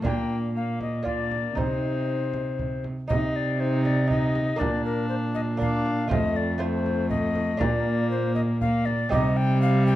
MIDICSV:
0, 0, Header, 1, 6, 480
1, 0, Start_track
1, 0, Tempo, 508044
1, 46, Time_signature, 3, 2, 24, 8
1, 3407, Tempo, 501672
1, 9483, End_track
2, 0, Start_track
2, 0, Title_t, "Recorder"
2, 0, Program_c, 0, 74
2, 56, Note_on_c, 0, 79, 82
2, 353, Note_off_c, 0, 79, 0
2, 535, Note_on_c, 0, 77, 69
2, 749, Note_off_c, 0, 77, 0
2, 773, Note_on_c, 0, 75, 75
2, 1000, Note_off_c, 0, 75, 0
2, 1007, Note_on_c, 0, 74, 87
2, 1491, Note_on_c, 0, 72, 75
2, 1505, Note_off_c, 0, 74, 0
2, 2696, Note_off_c, 0, 72, 0
2, 2919, Note_on_c, 0, 75, 94
2, 3174, Note_on_c, 0, 74, 93
2, 3188, Note_off_c, 0, 75, 0
2, 3403, Note_on_c, 0, 72, 88
2, 3417, Note_off_c, 0, 74, 0
2, 3632, Note_off_c, 0, 72, 0
2, 3638, Note_on_c, 0, 74, 97
2, 3878, Note_off_c, 0, 74, 0
2, 3889, Note_on_c, 0, 75, 100
2, 4352, Note_on_c, 0, 74, 96
2, 4366, Note_off_c, 0, 75, 0
2, 4588, Note_off_c, 0, 74, 0
2, 4594, Note_on_c, 0, 70, 93
2, 4822, Note_off_c, 0, 70, 0
2, 4827, Note_on_c, 0, 72, 79
2, 4885, Note_off_c, 0, 72, 0
2, 5072, Note_on_c, 0, 75, 97
2, 5130, Note_off_c, 0, 75, 0
2, 5324, Note_on_c, 0, 77, 87
2, 5796, Note_off_c, 0, 77, 0
2, 5802, Note_on_c, 0, 75, 112
2, 6045, Note_on_c, 0, 74, 94
2, 6059, Note_off_c, 0, 75, 0
2, 6287, Note_on_c, 0, 72, 90
2, 6302, Note_off_c, 0, 74, 0
2, 6740, Note_off_c, 0, 72, 0
2, 6745, Note_on_c, 0, 75, 117
2, 7232, Note_on_c, 0, 74, 96
2, 7247, Note_off_c, 0, 75, 0
2, 7708, Note_off_c, 0, 74, 0
2, 7713, Note_on_c, 0, 72, 92
2, 7940, Note_off_c, 0, 72, 0
2, 7945, Note_on_c, 0, 75, 112
2, 8003, Note_off_c, 0, 75, 0
2, 8196, Note_on_c, 0, 77, 98
2, 8429, Note_on_c, 0, 74, 111
2, 8444, Note_off_c, 0, 77, 0
2, 8675, Note_off_c, 0, 74, 0
2, 8685, Note_on_c, 0, 75, 111
2, 8918, Note_on_c, 0, 79, 118
2, 8932, Note_off_c, 0, 75, 0
2, 9156, Note_off_c, 0, 79, 0
2, 9162, Note_on_c, 0, 77, 117
2, 9390, Note_off_c, 0, 77, 0
2, 9396, Note_on_c, 0, 79, 121
2, 9483, Note_off_c, 0, 79, 0
2, 9483, End_track
3, 0, Start_track
3, 0, Title_t, "Lute"
3, 0, Program_c, 1, 24
3, 21, Note_on_c, 1, 58, 46
3, 34, Note_on_c, 1, 62, 49
3, 46, Note_on_c, 1, 65, 46
3, 55, Note_on_c, 1, 46, 51
3, 955, Note_off_c, 1, 58, 0
3, 962, Note_off_c, 1, 62, 0
3, 968, Note_off_c, 1, 65, 0
3, 969, Note_on_c, 1, 58, 44
3, 977, Note_on_c, 1, 62, 47
3, 992, Note_on_c, 1, 65, 45
3, 1446, Note_off_c, 1, 46, 0
3, 1451, Note_off_c, 1, 58, 0
3, 1455, Note_off_c, 1, 62, 0
3, 1463, Note_off_c, 1, 65, 0
3, 1466, Note_on_c, 1, 63, 45
3, 1485, Note_on_c, 1, 48, 50
3, 2704, Note_off_c, 1, 48, 0
3, 2886, Note_off_c, 1, 63, 0
3, 2906, Note_on_c, 1, 63, 57
3, 2929, Note_on_c, 1, 48, 62
3, 3846, Note_off_c, 1, 63, 0
3, 3855, Note_on_c, 1, 63, 54
3, 4320, Note_on_c, 1, 58, 59
3, 4327, Note_off_c, 1, 63, 0
3, 4329, Note_off_c, 1, 48, 0
3, 4331, Note_on_c, 1, 62, 50
3, 4343, Note_on_c, 1, 70, 57
3, 4358, Note_on_c, 1, 46, 66
3, 5274, Note_off_c, 1, 58, 0
3, 5280, Note_off_c, 1, 62, 0
3, 5286, Note_off_c, 1, 70, 0
3, 5288, Note_on_c, 1, 58, 56
3, 5300, Note_on_c, 1, 62, 52
3, 5316, Note_on_c, 1, 70, 52
3, 5764, Note_off_c, 1, 46, 0
3, 5766, Note_off_c, 1, 58, 0
3, 5769, Note_on_c, 1, 57, 52
3, 5778, Note_off_c, 1, 62, 0
3, 5782, Note_on_c, 1, 65, 59
3, 5786, Note_off_c, 1, 70, 0
3, 5790, Note_on_c, 1, 72, 59
3, 5804, Note_on_c, 1, 41, 67
3, 6239, Note_off_c, 1, 57, 0
3, 6249, Note_off_c, 1, 65, 0
3, 6251, Note_on_c, 1, 57, 58
3, 6258, Note_off_c, 1, 72, 0
3, 6261, Note_on_c, 1, 65, 59
3, 6270, Note_on_c, 1, 72, 64
3, 7195, Note_off_c, 1, 57, 0
3, 7200, Note_off_c, 1, 65, 0
3, 7202, Note_off_c, 1, 41, 0
3, 7202, Note_on_c, 1, 62, 60
3, 7205, Note_off_c, 1, 72, 0
3, 7212, Note_on_c, 1, 65, 63
3, 7227, Note_on_c, 1, 70, 62
3, 7239, Note_on_c, 1, 46, 65
3, 8623, Note_off_c, 1, 62, 0
3, 8628, Note_off_c, 1, 65, 0
3, 8635, Note_off_c, 1, 70, 0
3, 8642, Note_off_c, 1, 46, 0
3, 8655, Note_on_c, 1, 60, 64
3, 8666, Note_on_c, 1, 63, 58
3, 8675, Note_on_c, 1, 67, 63
3, 8692, Note_on_c, 1, 48, 74
3, 9483, Note_off_c, 1, 48, 0
3, 9483, Note_off_c, 1, 60, 0
3, 9483, Note_off_c, 1, 63, 0
3, 9483, Note_off_c, 1, 67, 0
3, 9483, End_track
4, 0, Start_track
4, 0, Title_t, "Viola"
4, 0, Program_c, 2, 41
4, 42, Note_on_c, 2, 58, 70
4, 511, Note_off_c, 2, 58, 0
4, 516, Note_on_c, 2, 58, 58
4, 985, Note_off_c, 2, 58, 0
4, 996, Note_on_c, 2, 58, 58
4, 1476, Note_on_c, 2, 63, 63
4, 1491, Note_off_c, 2, 58, 0
4, 2738, Note_off_c, 2, 63, 0
4, 2920, Note_on_c, 2, 63, 74
4, 3367, Note_off_c, 2, 63, 0
4, 3385, Note_on_c, 2, 63, 76
4, 3867, Note_off_c, 2, 63, 0
4, 3872, Note_on_c, 2, 63, 77
4, 4356, Note_on_c, 2, 62, 73
4, 4371, Note_off_c, 2, 63, 0
4, 5312, Note_off_c, 2, 62, 0
4, 5318, Note_on_c, 2, 62, 80
4, 5793, Note_off_c, 2, 62, 0
4, 5800, Note_on_c, 2, 57, 74
4, 6272, Note_off_c, 2, 57, 0
4, 6278, Note_on_c, 2, 57, 80
4, 7249, Note_on_c, 2, 58, 84
4, 7263, Note_off_c, 2, 57, 0
4, 8204, Note_off_c, 2, 58, 0
4, 8211, Note_on_c, 2, 58, 73
4, 8677, Note_off_c, 2, 58, 0
4, 8683, Note_on_c, 2, 55, 104
4, 9483, Note_off_c, 2, 55, 0
4, 9483, End_track
5, 0, Start_track
5, 0, Title_t, "Cello"
5, 0, Program_c, 3, 42
5, 51, Note_on_c, 3, 46, 68
5, 1453, Note_off_c, 3, 46, 0
5, 1488, Note_on_c, 3, 48, 62
5, 2719, Note_off_c, 3, 48, 0
5, 2938, Note_on_c, 3, 48, 85
5, 4333, Note_off_c, 3, 48, 0
5, 4365, Note_on_c, 3, 46, 77
5, 5802, Note_on_c, 3, 41, 76
5, 5817, Note_off_c, 3, 46, 0
5, 7235, Note_off_c, 3, 41, 0
5, 7241, Note_on_c, 3, 46, 82
5, 8652, Note_off_c, 3, 46, 0
5, 8693, Note_on_c, 3, 48, 93
5, 9483, Note_off_c, 3, 48, 0
5, 9483, End_track
6, 0, Start_track
6, 0, Title_t, "Frame drum"
6, 44, Note_on_c, 9, 64, 78
6, 139, Note_off_c, 9, 64, 0
6, 763, Note_on_c, 9, 64, 49
6, 857, Note_off_c, 9, 64, 0
6, 1002, Note_on_c, 9, 64, 44
6, 1097, Note_off_c, 9, 64, 0
6, 1243, Note_on_c, 9, 64, 45
6, 1337, Note_off_c, 9, 64, 0
6, 1483, Note_on_c, 9, 64, 71
6, 1578, Note_off_c, 9, 64, 0
6, 2208, Note_on_c, 9, 64, 51
6, 2302, Note_off_c, 9, 64, 0
6, 2448, Note_on_c, 9, 64, 49
6, 2542, Note_off_c, 9, 64, 0
6, 2687, Note_on_c, 9, 64, 43
6, 2781, Note_off_c, 9, 64, 0
6, 2933, Note_on_c, 9, 64, 81
6, 3027, Note_off_c, 9, 64, 0
6, 3644, Note_on_c, 9, 64, 54
6, 3740, Note_off_c, 9, 64, 0
6, 3881, Note_on_c, 9, 64, 52
6, 3977, Note_off_c, 9, 64, 0
6, 4122, Note_on_c, 9, 64, 56
6, 4217, Note_off_c, 9, 64, 0
6, 4368, Note_on_c, 9, 64, 83
6, 4463, Note_off_c, 9, 64, 0
6, 5087, Note_on_c, 9, 64, 49
6, 5182, Note_off_c, 9, 64, 0
6, 5328, Note_on_c, 9, 64, 49
6, 5424, Note_off_c, 9, 64, 0
6, 5564, Note_on_c, 9, 64, 46
6, 5660, Note_off_c, 9, 64, 0
6, 5804, Note_on_c, 9, 64, 89
6, 5899, Note_off_c, 9, 64, 0
6, 6521, Note_on_c, 9, 64, 46
6, 6617, Note_off_c, 9, 64, 0
6, 6756, Note_on_c, 9, 64, 51
6, 6852, Note_off_c, 9, 64, 0
6, 6994, Note_on_c, 9, 64, 52
6, 7089, Note_off_c, 9, 64, 0
6, 7235, Note_on_c, 9, 64, 93
6, 7331, Note_off_c, 9, 64, 0
6, 7959, Note_on_c, 9, 64, 46
6, 8054, Note_off_c, 9, 64, 0
6, 8199, Note_on_c, 9, 64, 54
6, 8295, Note_off_c, 9, 64, 0
6, 8445, Note_on_c, 9, 64, 49
6, 8540, Note_off_c, 9, 64, 0
6, 8683, Note_on_c, 9, 64, 81
6, 8778, Note_off_c, 9, 64, 0
6, 9408, Note_on_c, 9, 64, 51
6, 9483, Note_off_c, 9, 64, 0
6, 9483, End_track
0, 0, End_of_file